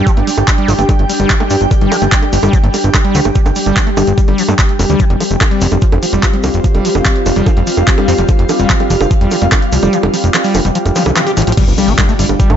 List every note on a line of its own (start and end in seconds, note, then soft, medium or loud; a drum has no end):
0.00 11.56 G3 medium
0.00 5.80 D4 loud
0.00 5.90 G4 medium
0.00 11.56 G4 medium
0.00 5.51 G5 loud
0.07 0.12 F3 loud
0.07 kick loud
0.07 closed hi-hat medium
0.07 shaker medium
0.17 0.23 G1 medium
0.17 0.20 A3 medium
0.17 closed hi-hat medium
0.17 high bongo soft
0.27 0.30 G3 medium
0.27 open hi-hat loud
0.27 shaker medium
0.37 0.43 G1 medium
0.37 high bongo medium
0.37 shaker soft
0.48 0.51 G3 medium
0.48 kick loud
0.48 clap loud
0.48 closed hi-hat medium
0.48 shaker medium
0.58 0.70 G3 loud
0.58 closed hi-hat medium
0.68 0.74 G1 medium
0.68 0.73 F3 loud
0.68 open hi-hat loud
0.68 high bongo soft
0.68 shaker medium
0.79 0.84 G1 medium
0.79 0.82 A3 medium
0.79 closed hi-hat medium
0.79 shaker soft
0.89 0.92 G3 medium
0.89 kick loud
0.89 closed hi-hat medium
0.89 high bongo medium
0.89 shaker medium
0.99 1.05 G1 medium
0.99 closed hi-hat medium
1.09 1.12 G3 medium
1.09 open hi-hat loud
1.09 shaker loud
1.20 1.26 G1 medium
1.20 1.32 G3 loud
1.20 closed hi-hat medium
1.20 high bongo soft
1.20 shaker soft
1.30 1.35 F3 loud
1.30 kick loud
1.30 clap loud
1.30 closed hi-hat medium
1.30 shaker medium
1.40 1.43 A3 medium
1.40 closed hi-hat medium
1.40 high bongo medium
1.50 1.56 G2 loud
1.50 1.53 G3 medium
1.50 open hi-hat loud
1.50 shaker loud
1.61 1.67 G1 medium
1.61 closed hi-hat medium
1.61 shaker soft
1.71 1.74 G3 medium
1.71 kick loud
1.71 closed hi-hat medium
1.71 high bongo soft
1.71 shaker medium
1.81 1.87 G1 medium
1.81 1.93 G3 loud
1.81 closed hi-hat medium
1.92 1.96 F3 loud
1.92 open hi-hat loud
1.92 high bongo medium
1.92 shaker loud
2.02 2.08 G1 medium
2.02 2.05 A3 medium
2.02 closed hi-hat soft
2.02 shaker soft
2.12 2.15 G3 medium
2.12 kick loud
2.12 clap loud
2.12 closed hi-hat medium
2.12 shaker medium
2.22 closed hi-hat medium
2.22 high bongo soft
2.33 2.39 G1 medium
2.33 2.36 G3 medium
2.33 open hi-hat loud
2.33 shaker loud
2.43 2.49 G1 medium
2.43 2.55 G3 loud
2.43 closed hi-hat medium
2.43 high bongo medium
2.43 shaker soft
2.53 2.58 F3 loud
2.53 kick loud
2.53 closed hi-hat medium
2.53 shaker medium
2.64 2.69 G1 medium
2.64 2.66 A3 medium
2.64 closed hi-hat medium
2.74 2.77 G3 medium
2.74 open hi-hat loud
2.74 high bongo soft
2.74 shaker loud
2.84 2.90 G1 medium
2.84 closed hi-hat medium
2.84 shaker soft
2.94 2.97 G3 medium
2.94 kick loud
2.94 clap loud
2.94 closed hi-hat medium
2.94 high bongo medium
2.94 shaker soft
3.05 3.16 G3 loud
3.05 closed hi-hat medium
3.15 3.21 D2 medium
3.15 3.20 F3 loud
3.15 open hi-hat loud
3.15 shaker loud
3.24 3.31 G1 medium
3.24 3.28 A3 medium
3.24 closed hi-hat medium
3.24 high bongo soft
3.24 shaker soft
3.35 3.38 G3 medium
3.35 kick loud
3.35 closed hi-hat medium
3.35 shaker medium
3.46 3.52 G1 medium
3.46 closed hi-hat medium
3.46 high bongo medium
3.46 shaker soft
3.56 3.59 G3 medium
3.56 open hi-hat loud
3.56 shaker loud
3.66 3.72 G1 medium
3.66 3.78 G3 loud
3.66 closed hi-hat soft
3.66 shaker soft
3.77 3.81 F3 loud
3.77 kick loud
3.77 clap loud
3.77 closed hi-hat medium
3.77 high bongo soft
3.77 shaker medium
3.87 3.90 A3 medium
3.87 closed hi-hat soft
3.97 4.03 G1 loud
3.97 4.00 G3 medium
3.97 open hi-hat loud
3.97 high bongo medium
3.97 shaker medium
4.07 4.13 G1 medium
4.07 closed hi-hat medium
4.07 shaker soft
4.18 4.21 G3 medium
4.18 kick loud
4.18 closed hi-hat medium
4.18 shaker medium
4.28 4.34 G1 medium
4.28 4.40 G3 loud
4.28 closed hi-hat medium
4.28 high bongo soft
4.38 4.43 F3 loud
4.38 open hi-hat loud
4.38 shaker medium
4.48 4.54 G2 medium
4.48 4.51 A3 medium
4.48 high bongo medium
4.48 shaker soft
4.59 4.62 G3 medium
4.59 kick loud
4.59 clap loud
4.59 closed hi-hat medium
4.59 shaker medium
4.69 closed hi-hat soft
4.79 4.85 F1 medium
4.79 4.82 G3 medium
4.79 open hi-hat loud
4.79 high bongo soft
4.79 shaker loud
4.90 4.95 D2 medium
4.90 5.01 G3 loud
4.90 closed hi-hat medium
4.90 shaker soft
5.00 5.05 E3 loud
5.00 12.35 C4 medium
5.00 kick loud
5.00 closed hi-hat medium
5.00 shaker medium
5.10 5.16 F1 medium
5.10 5.13 G3 medium
5.10 closed hi-hat medium
5.20 5.23 F3 medium
5.20 open hi-hat loud
5.20 high bongo soft
5.20 shaker medium
5.30 5.36 F1 medium
5.30 closed hi-hat soft
5.30 shaker soft
5.41 5.44 F3 medium
5.41 kick loud
5.41 clap loud
5.41 closed hi-hat medium
5.41 high bongo medium
5.41 shaker medium
5.51 5.63 G3 medium
5.51 closed hi-hat medium
5.61 5.67 F1 medium
5.61 5.66 E3 loud
5.61 12.57 F4 medium
5.61 open hi-hat loud
5.61 shaker medium
5.72 5.78 F1 medium
5.72 5.75 G3 medium
5.72 closed hi-hat medium
5.72 high bongo soft
5.72 shaker soft
5.82 5.85 F3 medium
5.82 kick loud
5.82 closed hi-hat medium
5.82 shaker medium
5.92 5.98 F1 medium
5.92 closed hi-hat medium
5.92 high bongo medium
6.03 6.06 F3 medium
6.03 open hi-hat loud
6.03 shaker medium
6.13 6.19 F1 medium
6.13 6.25 G3 medium
6.13 shaker soft
6.23 6.28 E3 loud
6.23 12.57 F5 medium
6.23 kick loud
6.23 clap loud
6.23 closed hi-hat medium
6.23 high bongo soft
6.23 shaker medium
6.33 6.36 G3 medium
6.33 closed hi-hat medium
6.44 6.49 C2 medium
6.44 6.47 F3 medium
6.44 open hi-hat loud
6.44 high bongo medium
6.44 shaker loud
6.54 6.60 F1 medium
6.54 closed hi-hat medium
6.54 shaker soft
6.64 6.67 F3 medium
6.64 kick loud
6.64 closed hi-hat medium
6.64 shaker soft
6.75 6.80 F1 medium
6.75 6.86 G3 medium
6.75 closed hi-hat medium
6.75 high bongo soft
6.85 6.90 E3 loud
6.85 open hi-hat loud
6.85 shaker medium
6.95 7.01 F1 medium
6.95 6.98 G3 medium
6.95 high bongo medium
6.95 shaker soft
7.05 7.08 F3 medium
7.05 kick loud
7.05 clap loud
7.05 closed hi-hat medium
7.05 shaker medium
7.16 closed hi-hat medium
7.26 7.32 F1 medium
7.26 7.29 F3 medium
7.26 open hi-hat loud
7.26 high bongo soft
7.26 shaker medium
7.36 7.42 F1 medium
7.36 7.48 G3 medium
7.36 closed hi-hat medium
7.36 shaker soft
7.46 7.51 E3 loud
7.46 kick loud
7.46 closed hi-hat medium
7.46 high bongo medium
7.46 shaker soft
7.57 7.63 F1 medium
7.57 7.60 G3 medium
7.57 closed hi-hat soft
7.67 7.70 F3 medium
7.67 open hi-hat loud
7.67 shaker loud
7.77 7.83 F1 medium
7.77 closed hi-hat medium
7.77 high bongo soft
7.77 shaker soft
7.87 7.90 F3 medium
7.87 kick loud
7.87 clap loud
7.87 closed hi-hat medium
7.87 shaker soft
7.98 8.10 G3 medium
7.98 closed hi-hat medium
7.98 high bongo medium
8.08 8.14 F2 medium
8.08 8.13 E3 loud
8.08 open hi-hat loud
8.08 shaker medium
8.18 8.24 F1 medium
8.18 8.21 G3 medium
8.18 closed hi-hat medium
8.18 shaker soft
8.28 8.32 F3 medium
8.28 kick loud
8.28 closed hi-hat medium
8.28 high bongo soft
8.28 shaker soft
8.39 8.45 F1 medium
8.39 closed hi-hat medium
8.49 8.52 F3 medium
8.49 open hi-hat loud
8.49 high bongo medium
8.49 shaker medium
8.59 8.65 F1 medium
8.59 8.71 G3 medium
8.59 closed hi-hat medium
8.59 shaker soft
8.70 8.75 E3 loud
8.70 kick loud
8.70 clap loud
8.70 closed hi-hat medium
8.70 shaker soft
8.80 8.83 G3 medium
8.80 closed hi-hat medium
8.80 high bongo soft
8.90 8.96 F1 medium
8.90 8.93 F3 medium
8.90 open hi-hat loud
8.90 shaker medium
9.01 9.06 F1 medium
9.01 closed hi-hat medium
9.01 high bongo medium
9.01 shaker soft
9.11 9.14 F3 medium
9.11 kick loud
9.11 closed hi-hat medium
9.11 shaker medium
9.21 9.27 F1 medium
9.21 9.33 G3 medium
9.21 closed hi-hat medium
9.31 9.36 E3 loud
9.31 open hi-hat loud
9.31 high bongo soft
9.31 shaker medium
9.42 9.47 F1 medium
9.42 9.45 G3 medium
9.42 closed hi-hat medium
9.42 shaker soft
9.52 9.55 F3 medium
9.52 kick loud
9.52 clap loud
9.52 closed hi-hat medium
9.52 high bongo medium
9.52 shaker soft
9.62 closed hi-hat medium
9.72 9.78 C2 loud
9.72 9.75 F3 medium
9.72 open hi-hat loud
9.72 shaker loud
9.83 9.89 F1 medium
9.83 9.95 G3 medium
9.83 closed hi-hat medium
9.83 high bongo soft
9.83 shaker soft
9.93 9.98 E3 loud
9.93 closed hi-hat medium
9.93 shaker medium
10.03 10.09 F1 medium
10.03 10.06 G3 medium
10.03 closed hi-hat medium
10.03 high bongo medium
10.14 10.16 F3 medium
10.14 open hi-hat loud
10.14 shaker medium
10.24 10.30 F1 medium
10.24 closed hi-hat medium
10.24 shaker soft
10.34 10.37 F3 medium
10.34 clap loud
10.34 closed hi-hat medium
10.34 high bongo soft
10.34 shaker medium
10.44 10.56 G3 medium
10.44 open hi-hat medium
10.44 shaker soft
10.54 10.60 F1 medium
10.54 10.60 E3 loud
10.54 open hi-hat loud
10.54 high bongo medium
10.54 shaker medium
10.65 10.71 F1 medium
10.65 10.68 G3 medium
10.65 closed hi-hat medium
10.65 shaker soft
10.75 10.78 F3 medium
10.75 closed hi-hat medium
10.75 shaker soft
10.86 10.91 F1 medium
10.86 closed hi-hat medium
10.86 high bongo soft
10.86 shaker soft
10.96 11.03 F3 loud
10.96 open hi-hat loud
10.96 zap medium
10.96 shaker medium
11.06 11.12 C2 medium
11.06 11.11 E3 medium
11.06 closed hi-hat medium
11.06 high bongo medium
11.06 shaker soft
11.16 11.21 E3 loud
11.16 clap loud
11.16 closed hi-hat medium
11.16 shaker soft
11.27 11.31 G4 loud
11.27 closed hi-hat medium
11.27 shaker soft
11.37 11.43 A1 loud
11.37 11.44 E3 medium
11.37 closed hi-hat medium
11.37 open hi-hat loud
11.37 high bongo soft
11.37 shaker medium
11.42 closed hi-hat medium
11.47 11.53 A1 medium
11.47 11.52 F3 medium
11.47 closed hi-hat medium
11.47 shaker soft
11.52 closed hi-hat medium
11.57 12.57 G3 medium
11.57 11.65 G3 medium
11.57 12.57 D4 medium
11.57 12.57 G4 medium
11.57 kick loud
11.57 closed hi-hat loud
11.57 crash loud
11.57 impact medium
11.57 shaker medium
11.68 11.73 G1 medium
11.68 closed hi-hat soft
11.68 shaker soft
11.78 11.90 G3 loud
11.78 open hi-hat loud
11.78 high bongo soft
11.78 shaker loud
11.88 11.94 G1 medium
11.88 11.93 A#3 medium
11.88 closed hi-hat soft
11.88 shaker soft
11.99 12.03 G3 medium
11.99 kick loud
11.99 clap loud
11.99 closed hi-hat loud
11.99 high bongo medium
11.99 shaker medium
12.06 12.14 A3 medium
12.06 12.57 G4 medium
12.06 closed hi-hat soft
12.06 shaker soft
12.19 12.25 G1 medium
12.19 12.26 G3 medium
12.19 open hi-hat loud
12.19 shaker loud
12.29 12.35 G1 medium
12.29 closed hi-hat soft
12.29 high bongo soft
12.29 shaker soft
12.40 12.51 G3 loud
12.40 kick loud
12.40 closed hi-hat loud
12.40 shaker medium
12.50 12.56 G1 medium
12.50 12.55 A#3 medium
12.50 closed hi-hat soft
12.50 high bongo medium